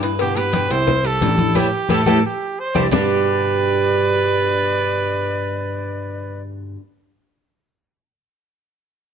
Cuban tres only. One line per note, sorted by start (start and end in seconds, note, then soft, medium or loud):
0.03 0.36 B4 medium
0.37 0.53 G4 medium
0.53 0.70 B4 medium
0.70 1.04 E4 medium
1.04 1.38 G4 medium
1.39 1.54 E4 medium
1.55 1.67 E4 medium
1.55 1.67 G4 medium
1.55 1.66 A4 medium
1.89 2.01 E4 medium
1.89 2.01 G4 loud
1.89 2.01 A4 medium
2.06 2.18 E4 medium
2.06 2.18 G4 loud
2.06 2.18 A4 loud
2.75 2.86 D4 medium
2.75 2.86 E4 medium
2.75 2.86 G4 loud
2.91 6.74 G3 medium
2.91 6.75 D4 medium
2.91 6.75 G4 medium